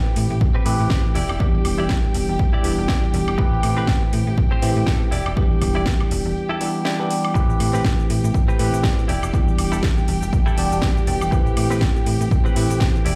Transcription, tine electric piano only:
0.00 0.63 E3 medium
0.00 0.63 A3 medium
0.00 0.63 C4 medium
0.00 0.64 G4 loud
0.00 0.63 B4 medium
0.65 1.14 E3 medium
0.65 1.14 A3 medium
0.65 1.14 C4 medium
0.65 1.14 G4 loud
0.65 1.14 B4 medium
1.39 2.61 E3 medium
1.39 2.61 G3 medium
1.39 2.62 B3 medium
1.39 2.62 D4 medium
1.39 2.62 G4 loud
2.63 3.36 E3 medium
2.63 3.36 G3 medium
2.63 3.36 B3 medium
2.63 3.36 D4 medium
2.63 3.36 G4 medium
3.38 4.59 E3 medium
3.38 4.60 A3 medium
3.38 4.60 C4 medium
3.38 4.60 G4 loud
3.38 4.60 B4 medium
4.62 5.11 E3 medium
4.62 5.11 A3 medium
4.62 5.11 C4 medium
4.62 5.11 G4 loud
5.36 6.58 E3 medium
5.36 6.58 G3 medium
5.36 6.58 B3 medium
5.36 6.58 D4 medium
5.36 6.59 G4 loud
6.60 6.96 E3 medium
6.60 6.96 G3 medium
6.60 6.96 B3 medium
6.60 6.96 D4 medium
6.60 6.96 G4 medium
6.99 7.32 E3 medium
6.99 7.33 G3 medium
6.99 7.33 B3 medium
6.99 7.33 D4 medium
6.99 7.33 G4 loud
7.34 8.56 E3 medium
7.34 8.56 A3 medium
7.34 8.57 C4 medium
7.34 8.57 G4 loud
7.34 8.57 B4 medium
8.59 9.07 E3 medium
8.59 9.07 A3 medium
8.59 9.08 C4 medium
8.59 9.08 G4 loud
8.59 9.08 B4 medium
9.33 10.55 E3 medium
9.33 10.55 G3 medium
9.33 10.55 B3 medium
9.33 10.55 D4 medium
9.33 10.56 G4 loud
10.57 11.29 E3 medium
10.57 11.29 G3 medium
10.57 11.29 B3 medium
10.57 11.30 D4 medium
10.57 11.30 G4 loud
11.31 12.53 E3 medium
11.31 12.53 A3 medium
11.31 12.54 C4 medium
11.31 12.54 G4 loud
11.31 12.53 B4 medium
12.56 13.04 E3 medium
12.56 13.04 A3 medium
12.56 13.04 C4 medium
12.56 13.04 G4 loud
12.56 13.04 B4 medium

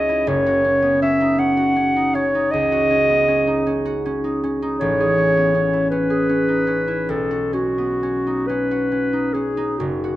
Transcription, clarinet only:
0.00 0.29 D#5 medium
0.28 1.01 C#5 medium
1.02 1.41 E5 medium
1.39 2.16 F#5 medium
2.15 2.52 C#5 medium
2.51 4.03 D#5 medium
4.79 5.87 C#5 medium
5.90 7.11 B4 medium
7.10 7.55 A4 medium
7.54 8.49 F#4 medium
8.47 9.35 B4 medium
9.33 9.80 G#4 soft
9.79 10.16 F#4 soft

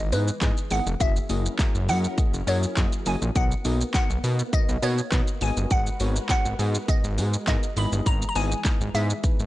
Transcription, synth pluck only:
0.00 0.10 D#5 medium
0.13 0.73 B4 medium
0.72 0.99 F#5 loud
1.01 1.85 E5 loud
1.89 2.50 F#5 loud
2.48 3.08 C#5 medium
3.07 3.20 G#5 loud
3.36 3.94 F#5 loud
3.95 4.55 F#5 loud
4.54 4.84 D#5 loud
4.83 5.44 C#5 loud
5.42 5.72 G#5 loud
5.72 6.29 F#5 loud
6.30 6.91 F#5 loud
6.89 7.44 D#5 loud
7.48 7.78 D#5 loud
7.78 8.08 B5 loud
8.07 8.28 A#5 loud
8.29 8.36 A#5 medium
8.36 8.96 G#5 loud
8.95 9.46 E5 loud

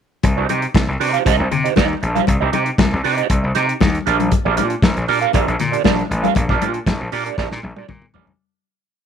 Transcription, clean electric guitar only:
0.24 muted clean electric guitar stroke soft
0.37 0.48 D#4 medium
0.37 0.48 G4 medium
0.37 0.49 C5 medium
0.37 0.49 D#5 medium
0.49 0.66 D#4 medium
0.49 0.62 G4 medium
0.49 0.62 C5 medium
0.49 0.61 D#5 medium
0.63 muted clean electric guitar stroke soft
0.75 muted clean electric guitar stroke soft
0.89 muted clean electric guitar stroke soft
1.00 1.13 D#4 medium
1.00 1.13 G4 medium
1.00 1.12 C5 loud
1.00 1.13 D#5 loud
1.13 1.24 D#4 medium
1.13 1.24 G4 medium
1.13 1.24 C5 medium
1.13 1.26 F5 medium
1.25 1.46 D#4 medium
1.25 1.38 G4 medium
1.25 1.38 C5 medium
1.25 1.38 D#5 medium
1.39 muted clean electric guitar stroke soft
1.51 muted clean electric guitar stroke soft
1.64 1.75 D#4 soft
1.64 1.75 G4 soft
1.64 1.75 C5 medium
1.64 1.76 D#5 medium
1.76 1.97 D#4 medium
1.76 1.90 G4 medium
1.76 1.89 C5 medium
1.76 1.89 D#5 medium
1.90 muted clean electric guitar stroke soft
2.02 muted clean electric guitar stroke soft
2.15 2.26 D#4 medium
2.15 2.27 G4 medium
2.15 2.27 C5 medium
2.15 2.28 F5 medium
2.27 muted clean electric guitar stroke soft
2.41 2.51 D#4 medium
2.41 2.51 G4 medium
2.41 2.52 C5 medium
2.41 2.52 D#5 medium
2.52 2.70 D#4 medium
2.52 2.66 G4 medium
2.52 2.65 C5 medium
2.52 2.65 D#5 medium
2.66 muted clean electric guitar stroke soft
2.78 muted clean electric guitar stroke soft
2.92 muted clean electric guitar stroke soft
3.03 3.17 D#4 medium
3.03 3.17 G4 medium
3.03 3.16 C5 loud
3.03 3.16 D#5 medium
3.17 3.28 D#4 medium
3.17 3.28 G4 medium
3.17 3.29 C5 medium
3.17 3.29 D#5 medium
3.29 muted clean electric guitar stroke soft
3.43 muted clean electric guitar stroke soft
3.55 3.76 D#4 medium
3.55 3.68 G4 medium
3.55 3.67 C5 medium
3.55 3.67 D#5 medium
3.68 muted clean electric guitar stroke soft
3.81 muted clean electric guitar stroke soft
3.94 muted clean electric guitar stroke soft
4.06 4.27 D4 medium
4.06 4.19 G4 medium
4.06 4.19 A#4 medium
4.06 4.18 D5 loud
4.19 muted clean electric guitar stroke soft
4.32 muted clean electric guitar stroke soft
4.45 4.55 D4 medium
4.45 4.56 G4 medium
4.45 4.56 A#4 medium
4.45 4.56 D5 medium
4.57 4.74 D4 medium
4.57 4.70 G4 medium
4.57 4.70 A#4 medium
4.57 4.69 D5 medium
4.70 muted clean electric guitar stroke soft
4.83 muted clean electric guitar stroke soft
4.96 muted clean electric guitar stroke soft
5.08 5.21 D4 medium
5.08 5.21 G4 medium
5.08 5.21 A#4 medium
5.08 5.21 D5 medium
5.21 5.32 D4 soft
5.21 5.33 G4 soft
5.21 5.33 A#4 medium
5.21 5.34 F5 medium
5.34 5.54 D4 medium
5.34 5.47 G4 medium
5.34 5.47 A#4 loud
5.34 5.46 D5 medium
5.48 muted clean electric guitar stroke soft
5.59 muted clean electric guitar stroke soft
5.72 5.83 D4 soft
5.72 5.83 G4 medium
5.72 5.83 A#4 medium
5.72 5.84 D5 medium
5.84 6.05 D4 medium
5.84 5.98 G4 medium
5.84 5.97 A#4 medium
5.84 5.97 D5 medium
5.98 muted clean electric guitar stroke soft
6.09 muted clean electric guitar stroke soft
6.23 6.35 D4 medium
6.23 6.35 G4 medium
6.23 6.35 A#4 medium
6.23 6.36 F5 medium
6.36 muted clean electric guitar stroke soft
6.49 6.60 D4 medium
6.49 6.60 G4 medium
6.49 6.61 A#4 medium
6.49 6.61 D5 medium
6.61 6.78 D4 soft
6.61 6.74 G4 medium
6.61 6.74 A#4 medium
6.61 6.73 D5 medium
6.75 muted clean electric guitar stroke soft
6.87 muted clean electric guitar stroke soft
7.00 muted clean electric guitar stroke soft
7.12 7.25 D4 medium
7.12 7.25 G4 medium
7.12 7.25 A#4 medium
7.12 7.24 D5 loud
7.26 7.37 D4 medium
7.26 7.37 G4 medium
7.26 7.37 A#4 medium
7.26 7.38 D5 medium
7.38 7.59 D4 medium
7.38 7.51 G4 medium
7.38 7.50 A#4 medium
7.38 7.50 D5 medium
7.51 muted clean electric guitar stroke medium
7.63 muted clean electric guitar stroke soft
7.76 7.87 D4 soft
7.76 7.87 G4 medium
7.76 7.88 A#4 medium
7.76 7.88 D5 medium
7.88 muted clean electric guitar stroke soft
8.02 muted clean electric guitar stroke soft
8.14 8.35 D4 medium
8.14 8.27 G4 medium
8.14 8.27 A#4 medium
8.14 8.26 D5 medium
8.28 muted clean electric guitar stroke soft

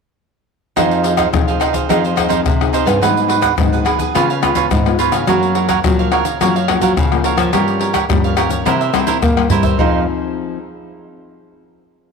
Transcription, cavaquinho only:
0.76 1.02 D#4 medium
0.76 1.03 G#4 medium
0.76 1.04 C5 medium
0.76 1.04 F5 medium
1.03 1.16 D#4 soft
1.03 1.17 G#4 soft
1.03 1.17 C5 soft
1.03 1.17 F5 medium
1.17 1.27 D#4 medium
1.17 1.28 G#4 medium
1.17 1.28 C5 medium
1.17 1.28 F5 medium
1.48 1.60 G#4 soft
1.48 1.60 C5 soft
1.48 1.60 F5 soft
1.60 1.74 D#4 medium
1.60 1.73 G#4 medium
1.60 1.73 C5 medium
1.60 1.72 F5 medium
1.73 1.88 G#4 soft
1.73 1.88 C5 soft
1.73 1.87 F5 soft
1.89 2.02 D#4 medium
1.89 2.03 G#4 medium
1.89 2.03 C5 medium
1.89 2.03 F5 medium
2.04 2.15 G#4 soft
2.04 2.16 C5 soft
2.04 2.17 F5 soft
2.16 2.27 D#4 soft
2.16 2.28 G#4 medium
2.16 2.28 C5 soft
2.16 2.29 F5 medium
2.29 2.39 D#4 medium
2.29 2.40 G#4 medium
2.29 2.40 C5 medium
2.29 2.40 F5 medium
2.73 2.86 D#4 medium
2.73 2.86 G#4 medium
2.73 2.85 C5 medium
2.73 2.84 F5 medium
2.86 3.01 G#4 soft
2.86 3.00 C5 soft
2.86 3.00 F5 soft
3.01 3.27 F#4 medium
3.01 3.28 G#4 medium
3.01 3.28 B4 medium
3.01 3.29 F#5 medium
3.28 3.40 F#4 soft
3.28 3.41 G#4 medium
3.28 3.41 B4 medium
3.28 3.41 F#5 medium
3.42 3.52 F#4 medium
3.42 3.52 G#4 medium
3.42 3.52 B4 medium
3.42 3.52 F#5 medium
3.73 3.84 G#4 soft
3.73 3.85 B4 soft
3.73 3.86 F#5 soft
3.85 3.99 F#4 medium
3.85 3.99 G#4 medium
3.85 3.98 B4 medium
3.85 3.97 F#5 medium
3.99 4.14 G#4 soft
3.99 4.13 B4 soft
3.99 4.13 F#5 soft
4.14 4.28 F4 medium
4.14 4.28 B4 medium
4.14 4.28 C#5 medium
4.14 4.29 F5 medium
4.30 4.42 B4 soft
4.30 4.42 C#5 soft
4.30 4.43 F5 medium
4.42 4.54 F4 soft
4.42 4.55 B4 medium
4.42 4.55 C#5 medium
4.42 4.55 F5 medium
4.55 4.65 F4 medium
4.55 4.66 B4 medium
4.55 4.66 C#5 medium
4.55 4.66 F5 medium
4.99 5.12 F4 medium
4.99 5.13 B4 medium
4.99 5.13 C#5 medium
4.99 5.12 F5 medium
5.13 5.27 B4 soft
5.13 5.27 C#5 soft
5.13 5.26 F5 soft
5.28 5.54 F#4 medium
5.28 5.55 A#4 medium
5.28 5.55 C#5 medium
5.28 5.56 F5 medium
5.55 5.67 F#4 soft
5.55 5.68 A#4 soft
5.55 5.68 C#5 soft
5.55 5.68 F5 medium
5.68 5.78 F#4 medium
5.68 5.79 A#4 medium
5.68 5.79 C#5 medium
5.68 5.79 F5 medium
5.99 6.11 A#4 soft
5.99 6.12 C#5 soft
5.99 6.12 F5 soft
6.11 6.25 F#4 medium
6.11 6.25 A#4 medium
6.11 6.24 C#5 medium
6.11 6.24 F5 medium
6.25 6.40 A#4 soft
6.25 6.39 C#5 soft
6.25 6.39 F5 soft
6.41 6.54 F#4 medium
6.41 6.54 A#4 medium
6.41 6.54 C#5 medium
6.41 6.55 F5 medium
6.56 6.68 A#4 soft
6.56 6.69 C#5 soft
6.56 6.68 F5 medium
6.68 6.80 F#4 soft
6.68 6.81 A#4 soft
6.68 6.81 C#5 soft
6.68 6.82 F5 medium
6.82 6.91 F#4 medium
6.82 6.92 A#4 medium
6.82 6.92 C#5 medium
6.82 6.92 F5 medium
7.24 7.38 F#4 medium
7.24 7.37 A#4 medium
7.24 7.36 C#5 medium
7.24 7.35 F5 medium
7.37 7.52 A#4 soft
7.37 7.51 C#5 soft
7.37 7.51 F5 soft
7.53 7.78 G4 medium
7.53 7.79 A#4 medium
7.53 7.80 C#5 medium
7.53 7.80 F5 medium
7.79 7.92 G4 soft
7.79 7.93 A#4 medium
7.79 7.93 C#5 medium
7.79 7.93 F5 soft
7.93 8.04 G4 medium
7.93 8.04 A#4 medium
7.93 8.04 C#5 medium
7.93 8.04 F5 medium
8.24 8.36 A#4 soft
8.24 8.37 C#5 soft
8.24 8.37 F5 soft
8.37 8.50 G4 medium
8.37 8.51 A#4 medium
8.37 8.49 C#5 medium
8.37 8.48 F5 medium
8.49 8.65 A#4 soft
8.49 8.64 C#5 soft
8.49 8.64 F5 soft
8.65 8.79 E4 medium
8.65 8.79 A#4 medium
8.65 8.79 C5 medium
8.65 8.79 E5 medium
8.81 8.93 A#4 soft
8.81 8.94 C5 soft
8.81 8.93 E5 medium
8.94 9.06 E4 soft
8.94 9.06 A#4 soft
8.94 9.06 C5 medium
8.94 9.07 E5 medium
9.07 9.17 E4 medium
9.07 9.17 A#4 medium
9.07 9.17 C5 medium
9.07 9.17 E5 medium
9.51 9.64 E4 medium
9.51 9.64 A#4 medium
9.51 9.63 C5 medium
9.51 9.62 E5 medium
9.63 9.78 A#4 soft
9.63 9.77 C5 soft
9.63 9.77 E5 soft
9.79 10.01 D#4 medium
9.79 10.02 G#4 medium
9.79 10.02 C5 medium
9.79 10.02 F5 medium

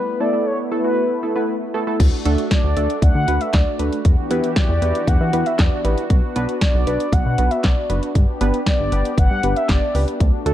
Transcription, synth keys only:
0.20 0.30 A3 medium
0.20 0.30 B3 medium
0.20 0.30 E4 medium
0.20 0.30 A4 medium
0.33 0.53 A3 medium
0.33 0.53 B3 medium
0.33 0.53 E4 medium
0.33 0.53 A4 medium
0.72 0.81 A3 medium
0.72 0.81 B3 medium
0.72 0.81 E4 medium
0.72 0.81 A4 medium
0.84 1.04 A3 medium
0.84 1.04 B3 medium
0.84 1.04 E4 medium
0.84 1.04 F#4 medium
1.23 1.33 A3 medium
1.23 1.33 B3 medium
1.23 1.33 E4 medium
1.23 1.33 A4 medium
1.35 1.55 A3 medium
1.35 1.55 B3 medium
1.35 1.55 E4 medium
1.35 1.55 B4 loud
1.74 1.84 A3 medium
1.74 1.84 B3 medium
1.74 1.84 E4 medium
1.74 1.84 A4 loud
1.87 2.00 A3 medium
1.87 2.00 B3 medium
1.87 2.00 E4 medium
1.87 2.00 A4 medium
2.25 2.45 A3 medium
2.25 2.45 D4 medium
2.25 2.45 F#4 medium
2.25 2.45 A4 loud
2.77 2.96 A3 medium
2.77 2.96 D4 medium
2.77 2.96 F#4 medium
2.77 2.96 A4 medium
3.28 3.48 A3 medium
3.28 3.48 D4 medium
3.28 3.48 F#4 medium
3.28 3.48 B4 medium
3.79 3.99 A3 medium
3.79 3.99 D4 medium
3.79 3.99 F#4 medium
3.79 3.99 B4 medium
4.31 4.50 B3 medium
4.31 4.50 E4 medium
4.31 4.50 G4 medium
4.31 4.50 B4 loud
4.82 5.02 B3 medium
4.82 5.02 E4 medium
4.82 5.02 G4 medium
4.82 5.02 B4 medium
5.33 5.53 B3 medium
5.33 5.53 E4 medium
5.33 5.53 G4 medium
5.33 5.53 B4 medium
5.85 6.04 B3 medium
5.85 6.04 E4 medium
5.85 6.04 G4 medium
5.85 6.04 B4 medium
6.36 6.55 B3 medium
6.36 6.55 D4 medium
6.36 6.55 F#4 medium
6.36 6.55 B4 loud
6.87 7.07 B3 medium
6.87 7.07 D4 medium
6.87 7.07 F#4 medium
6.87 7.07 B4 medium
7.38 7.58 B3 medium
7.38 7.58 D4 medium
7.38 7.58 F#4 medium
7.38 7.58 B4 medium
7.90 8.09 B3 medium
7.90 8.09 D4 medium
7.90 8.09 F#4 medium
7.90 8.09 B4 medium
8.41 8.60 B3 medium
8.41 8.60 D4 medium
8.41 8.60 G4 medium
8.41 8.60 B4 loud
8.92 9.12 B3 medium
8.92 9.12 D4 medium
8.92 9.12 G4 medium
8.92 9.12 B4 medium
9.44 9.63 B3 medium
9.44 9.63 D4 medium
9.44 9.63 G4 medium
9.44 9.63 B4 medium
9.95 10.14 B3 medium
9.95 10.14 D4 medium
9.95 10.14 G4 medium
9.95 10.14 B4 medium
10.46 10.54 A3 medium
10.46 10.54 D4 medium
10.46 10.54 F#4 medium
10.46 10.54 A4 loud

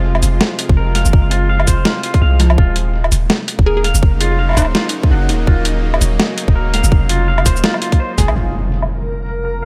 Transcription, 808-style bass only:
0.00 0.22 F1 loud
0.23 0.40 F1 loud
0.69 1.04 F1 loud
1.05 1.66 F#1 loud
1.68 1.84 F1 loud
2.22 2.57 C2 loud
2.58 3.11 D#1 loud
3.12 3.29 D#1 loud
3.59 3.93 D#1 medium
3.95 4.56 F1 loud
4.57 4.74 D#1 loud
5.11 5.30 F#1 loud
5.29 5.46 D#1 medium
5.47 6.00 D#1 loud
6.01 6.18 D#1 loud
6.48 6.83 D#1 loud
6.84 7.45 F1 loud
7.46 7.63 D#1 loud
8.18 8.30 F1 loud
8.28 8.35 C#2 medium
8.36 9.65 F1 medium

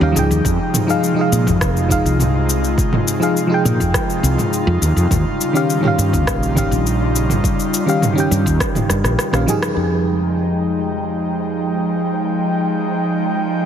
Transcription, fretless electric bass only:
0.01 0.13 D#2 medium
0.16 0.28 C#2 medium
0.30 0.42 D#2 medium
0.45 0.57 F2 medium
1.32 1.45 A#2 medium
1.47 1.63 F2 medium
1.61 2.01 F1 medium
2.05 2.74 C2 medium
3.65 3.78 A#2 medium
3.80 3.92 F2 medium
4.23 4.36 C2 medium
4.67 4.79 F2 medium
4.82 4.94 D#2 medium
4.96 5.08 F2 medium
5.11 5.23 D#2 medium
5.98 6.11 G2 medium
6.13 6.27 D#2 medium
6.27 6.67 A#1 medium
6.71 7.40 A#1 medium
8.31 8.44 G2 medium
8.46 8.58 D#2 loud
8.89 9.02 G2 medium
9.04 9.16 A#1 medium
9.33 9.45 A#1 medium
9.76 13.65 F2 medium

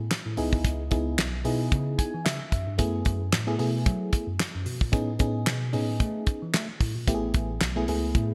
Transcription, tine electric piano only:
0.26 0.36 A2 loud
0.38 0.50 C#2 medium
0.53 0.63 D2 medium
0.65 0.87 C#2 medium
0.92 1.14 C#2 medium
1.18 1.45 B1 medium
1.45 1.67 B2 medium
1.72 1.94 C#3 medium
2.14 2.24 E3 medium
2.26 2.38 C#3 medium
2.52 2.65 F#2 medium
2.67 2.77 G2 medium
2.79 3.02 F#2 loud
3.06 3.28 F#2 medium
3.32 3.55 A2 medium
3.59 3.86 B2 medium
3.86 4.09 F#3 medium
4.27 4.37 F#2 medium
4.54 4.64 F#2 loud
4.66 4.79 B2 medium
4.81 4.91 A#2 medium
4.93 5.16 A2 medium
5.20 5.43 A2 medium
5.47 5.74 B2 medium
5.73 6.00 A2 medium
6.00 6.23 A3 loud
6.42 6.52 E3 medium
6.54 6.66 A3 loud
6.81 6.93 A2 medium
6.96 7.06 A#2 medium
7.08 7.30 A1 medium
7.34 7.57 A1 medium
7.61 7.84 B1 medium
7.88 8.11 C#2 medium
8.15 8.34 A2 loud

